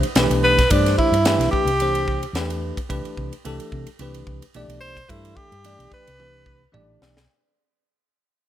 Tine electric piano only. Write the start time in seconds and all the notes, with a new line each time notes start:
0.17 E3 A3 D4 G4 B4
0.71 E3 A3 D4 G4 C5
1.26 E3 A3 D4 G4 B4
1.81 E3 A3 D4 G4 C5
2.35 E3 A3 D4 G4 B4
2.89 E3 A3 D4 G4 B4
3.45 E3 A3 D4 G4 A4
4.00 E3 A3 D4 G4 B4
4.55 E3 A3 D4 G4 D5
5.09 E3 A3 D4 G4 A4
5.64 E3 A3 D4 G4 D5
6.19 E3 A3 D4 G4 B4
6.72 E3 A3 D4 G4 D5